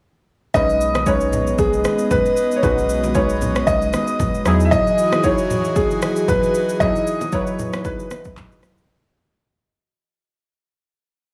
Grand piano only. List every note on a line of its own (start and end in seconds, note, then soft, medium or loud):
0.54 1.08 D#5 loud
1.06 1.55 C#5 medium
1.58 2.12 G#4 loud
2.11 2.58 B4 loud
2.56 2.63 C#5 medium
2.63 3.17 B4 medium
3.15 3.69 C#5 medium
3.67 4.42 D#5 medium
4.65 4.72 E5 medium
4.71 5.25 D#5 loud
5.24 5.78 C#5 loud
5.76 6.30 G#4 loud
6.28 6.82 B4 loud
6.80 7.34 D#5 loud
7.32 7.86 C#5 medium
7.85 8.59 B4 medium